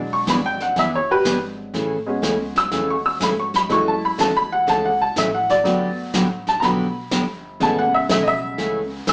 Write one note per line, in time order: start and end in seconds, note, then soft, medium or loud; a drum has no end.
0.00 0.26 E1 medium
0.00 1.70 F#3 medium
0.00 1.70 G#3 medium
0.00 1.70 D4 medium
0.13 0.28 C#6 medium
0.27 0.75 G#1 medium
0.27 0.39 E3 medium
0.27 0.39 B3 medium
0.27 0.40 D4 medium
0.27 0.40 G#4 medium
0.27 0.44 B5 loud
0.27 kick soft
0.27 snare medium
0.27 hi-hat pedal soft
0.46 0.60 G5 loud
0.60 0.77 F#5 medium
0.60 snare soft
0.76 1.23 F#1 medium
0.76 0.99 E3 medium
0.76 0.99 B3 medium
0.76 0.99 D4 medium
0.76 0.99 G#4 medium
0.76 0.93 E5 medium
0.76 brush sweep medium
0.76 kick soft
0.76 snare soft
0.95 1.10 C#5 medium
1.11 1.35 G4 medium
1.11 1.37 B4 medium
1.25 1.73 G#1 medium
1.25 1.37 E3 medium
1.25 1.37 B3 medium
1.25 1.37 D4 medium
1.25 1.37 G#4 medium
1.25 kick soft
1.25 snare medium
1.25 hi-hat pedal medium
1.74 2.21 A1 medium
1.74 1.97 C#3 medium
1.74 1.97 E3 medium
1.74 1.97 A3 medium
1.74 1.97 C#4 medium
1.74 1.97 G#4 medium
1.74 brush sweep soft
1.74 kick soft
1.74 snare soft
2.06 3.65 G#3 medium
2.06 3.66 B3 medium
2.06 3.66 C#4 medium
2.22 2.70 C#2 medium
2.22 2.35 C#3 medium
2.22 2.35 E3 medium
2.22 2.35 A3 medium
2.22 2.35 C#4 medium
2.22 2.35 G#4 medium
2.22 kick soft
2.22 snare medium
2.22 hi-hat pedal medium
2.56 2.88 E6 loud
2.56 snare soft
2.71 3.19 E2 medium
2.71 2.95 C#3 medium
2.71 2.95 E3 medium
2.71 2.95 A3 medium
2.71 2.95 C#4 medium
2.71 2.95 G#4 medium
2.71 brush sweep medium
2.71 kick soft
2.71 snare soft
2.90 3.05 C#6 medium
3.06 3.21 E6 medium
3.20 3.68 G#2 medium
3.20 3.33 C#3 medium
3.20 3.33 E3 medium
3.20 3.33 A3 medium
3.20 3.33 C#4 medium
3.20 3.33 G#4 medium
3.20 3.38 B5 medium
3.20 kick soft
3.20 snare medium
3.20 hi-hat pedal medium
3.40 3.54 C#6 medium
3.54 3.70 B5 medium
3.54 snare soft
3.69 4.17 F#2 medium
3.69 3.93 C#3 medium
3.69 3.93 E3 medium
3.69 5.61 G#3 medium
3.69 5.61 A3 soft
3.69 3.93 A3 medium
3.69 3.93 C#4 medium
3.69 5.61 E4 medium
3.69 3.93 F#4 medium
3.69 3.87 C#6 loud
3.69 brush sweep soft
3.69 kick soft
3.69 snare soft
3.88 4.03 A5 medium
4.05 4.19 B5 medium
4.18 4.66 E2 medium
4.18 4.30 C#3 medium
4.18 4.31 E3 medium
4.18 4.31 A3 medium
4.18 4.31 C#4 medium
4.18 4.31 F#4 medium
4.18 4.35 A5 medium
4.18 kick soft
4.18 snare medium
4.18 hi-hat pedal medium
4.37 4.51 B5 medium
4.52 4.68 F#5 medium
4.67 5.15 C#2 medium
4.67 4.90 C#3 medium
4.67 4.90 E3 medium
4.67 4.90 A3 medium
4.67 4.90 C#4 medium
4.67 4.91 F#4 medium
4.67 4.84 A5 medium
4.67 brush sweep soft
4.67 kick soft
4.67 snare soft
4.85 5.00 F#5 medium
5.02 5.17 A5 medium
5.16 5.64 A1 medium
5.16 5.28 C#3 medium
5.16 5.29 E3 medium
5.16 5.29 A3 medium
5.16 5.29 C#4 medium
5.16 5.29 F#4 medium
5.16 5.33 E5 medium
5.16 kick soft
5.16 snare medium
5.16 hi-hat pedal medium
5.34 5.49 F#5 medium
5.49 5.97 D5 loud
5.49 snare soft
5.64 6.12 G1 medium
5.64 5.88 D3 medium
5.64 6.42 F#3 medium
5.64 5.88 F#3 medium
5.64 6.43 A3 medium
5.64 6.43 B3 medium
5.64 5.88 B3 medium
5.64 5.88 D4 medium
5.64 5.89 G4 medium
5.64 brush sweep soft
5.64 kick soft
5.64 snare soft
6.14 6.61 A1 medium
6.14 6.26 D3 medium
6.14 6.26 F#3 medium
6.14 6.26 B3 medium
6.14 6.26 D4 medium
6.14 6.27 G4 medium
6.14 kick soft
6.14 snare medium
6.14 hi-hat pedal medium
6.47 6.63 A5 loud
6.47 snare soft
6.60 7.10 B1 medium
6.60 6.86 D3 medium
6.60 6.92 F#3 soft
6.60 6.86 F#3 medium
6.60 6.92 A3 soft
6.60 6.92 B3 medium
6.60 6.86 B3 medium
6.60 6.86 D4 medium
6.60 6.86 G4 medium
6.60 6.64 A#5 medium
6.60 brush sweep medium
6.60 kick soft
6.60 snare soft
6.65 7.59 B5 medium
7.11 7.59 G1 medium
7.11 7.24 D3 medium
7.11 7.24 F#3 medium
7.11 7.24 B3 medium
7.11 7.24 D4 medium
7.11 7.24 G4 medium
7.11 kick soft
7.11 snare medium
7.11 hi-hat pedal medium
7.60 8.08 A1 medium
7.60 9.13 C#3 medium
7.60 7.84 C#3 medium
7.60 7.84 E3 medium
7.60 9.13 G#3 medium
7.60 7.84 A3 medium
7.60 9.13 B3 medium
7.60 7.84 C#4 medium
7.60 7.84 G#4 medium
7.60 7.78 A5 loud
7.60 brush sweep medium
7.60 kick soft
7.60 snare soft
7.79 7.94 F#5 medium
7.94 8.10 E5 medium
8.09 8.57 B1 medium
8.09 8.22 C#3 medium
8.09 8.22 E3 medium
8.09 8.22 A3 medium
8.09 8.22 C#4 medium
8.09 8.22 G#4 medium
8.09 8.26 E5 medium
8.09 kick soft
8.09 snare medium
8.09 hi-hat pedal medium
8.23 8.29 D#5 medium
8.28 8.74 E5 loud
8.58 9.06 C#2 medium
8.58 8.81 C#3 medium
8.58 8.81 E3 medium
8.58 8.82 A3 medium
8.58 8.82 C#4 medium
8.58 8.82 G#4 medium
8.58 brush sweep medium
8.58 kick soft
8.58 snare soft
9.07 9.13 A1 medium
9.07 9.13 C#3 medium
9.07 9.13 E3 medium
9.07 9.13 A3 medium
9.07 9.13 C#4 medium
9.07 9.13 G#4 medium
9.07 9.13 E6 medium
9.07 kick soft
9.07 snare medium
9.07 hi-hat pedal medium